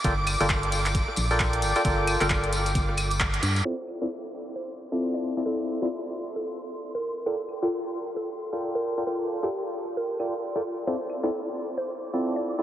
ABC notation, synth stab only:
X:1
M:4/4
L:1/16
Q:"Swing 16ths" 1/4=133
K:Dm
V:1 name="Synth stab"
[FABdg] z2 [FABdg] z6 z [FABdg]4 [FABdg] | [FABdg]3 [FABdg] z12 | [CEFAd] z2 [CEFAd] z6 z [CEFAd]4 [CEFAd] | [CEFAd]3 [CEFAd] z12 |
[FABdg] z2 [FABdg] z6 z [FABdg]4 [FABdg] | [FABdg]3 [FABdg] z6 [FABdg] z2 [FABdg] z2 | [CEFAd] z2 [CEFAd] z6 z [CEFAd]4 [CEFAd] |]